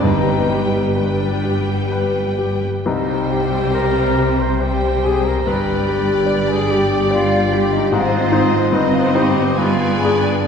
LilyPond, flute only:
\new Staff \with { instrumentName = "Flute" } { \time 3/4 \key g \phrygian \tempo 4 = 69 ees''8. r16 d''4 r4 | ees''8 g''8 bes''8. c'''16 g''8 aes''16 bes''16 | b''4~ b''16 aes''16 g''8 f''8 g''16 ees''16 | f''4 ees''16 f''16 g''8 f''8 d''8 | }